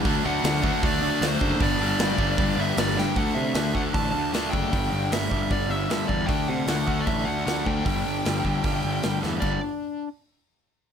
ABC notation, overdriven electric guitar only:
X:1
M:4/4
L:1/8
Q:1/4=153
K:Dmix
V:1 name="Overdriven electric guitar" clef=bass
[D,A,D] [D,A,D] [D,A,D] [D,A,D] [D,A,D] [D,A,D] [D,A,D] [D,A,D] | [G,,D,G,] [G,,D,G,] [G,,D,G,] [G,,D,G,] [G,,D,G,] [G,,D,G,] [G,,D,G,] [G,,D,G,] | [D,A,D]2 [D,A,D] [D,A,D] [D,A,D]2 [D,A,D] [D,A,D] | [G,,D,G,]2 [G,,D,G,] [G,,D,G,] [G,,D,G,]2 [G,,D,G,] [G,,D,G,] |
[D,A,D]2 [D,A,D] [D,A,D] [D,A,D]2 [D,A,D] [D,A,D] | [G,,D,G,]2 [G,,D,G,] [G,,D,G,] [G,,D,G,]2 [G,,D,G,] [G,,D,G,] | [G,,D,G,] z6 z |]